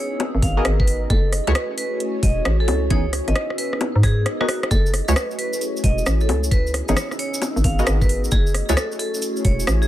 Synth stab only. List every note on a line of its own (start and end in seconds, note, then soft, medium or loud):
0.57 1.09 B3 medium
0.57 1.09 F#4 medium
0.57 1.09 G#4 medium
0.57 1.09 A#4 medium
0.57 1.09 D#5 medium
1.47 1.52 A3 loud
1.47 1.52 E4 medium
1.47 1.52 F#4 medium
1.47 1.52 G#4 medium
1.47 1.52 C#5 loud
2.90 3.05 E3 medium
2.90 3.05 B3 medium
2.90 3.05 C#4 medium
2.90 3.05 D#4 medium
2.90 3.05 G#4 loud
4.41 4.46 B3 medium
4.41 4.46 F#4 medium
4.41 4.46 G#4 medium
4.41 4.46 A#4 medium
4.41 4.46 D#5 medium
5.08 5.13 A3 medium
5.08 5.13 E4 medium
5.08 5.13 F#4 medium
5.08 5.13 G#4 medium
5.08 5.13 C#5 loud
6.89 6.97 E3 medium
6.89 6.97 B3 medium
6.89 6.97 C#4 medium
6.89 6.97 D#4 medium
6.89 6.97 G#4 medium
7.79 8.31 B3 medium
7.79 8.31 F#4 medium
7.79 8.31 G#4 medium
7.79 8.31 A#4 medium
7.79 8.31 D#5 medium
8.69 8.74 A3 medium
8.69 8.74 E4 medium
8.69 8.74 F#4 medium
8.69 8.74 G#4 medium
8.69 8.74 C#5 loud